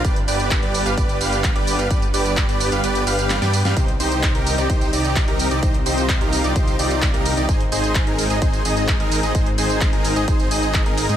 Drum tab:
HH |xxoxxxoxxxoxxxox|xxoxxxoxxxoxxxox|xxoxxxoxxxoxxxox|xxoxxxoxxxoxxxox|
TB |x-xxx-xxxxxxx-xx|xxxxxxxxxxxxxxxx|x-xxx-xxxxxxx-xx|x-xxx-xxxxxxx-xx|
CP |----x-------x---|----x-------x---|----x-------x---|----x-------x---|
SD |----------------|------------oo-o|----------------|----------------|
BD |o---o---o---o---|o---o-----------|o---o---o---o---|o---o---o---o---|

HH |xxoxxxoxxxoxxxox|xxoxxxoxxxoxxxox|
TB |x-xxx-xxxxxxx-xx|x-xxx-xxxxxxx-xx|
CP |----x-------x---|----x-------x---|
SD |----------------|----------------|
BD |o---o---o---o---|o---o---o---o---|